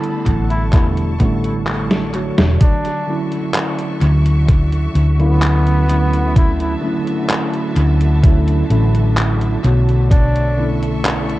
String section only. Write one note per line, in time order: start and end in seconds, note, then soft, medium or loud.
0.00 2.57 D3 medium
0.00 2.57 A4 medium
0.00 2.57 A5 medium
0.00 0.25 B5 medium
0.27 2.59 C#6 medium
2.60 11.39 D3 medium
2.60 10.07 F#4 medium
2.60 10.06 E5 medium
2.60 6.32 C#6 medium
6.36 10.07 A5 medium
10.11 11.39 A4 medium
10.11 11.39 E5 medium
10.11 11.39 C#6 medium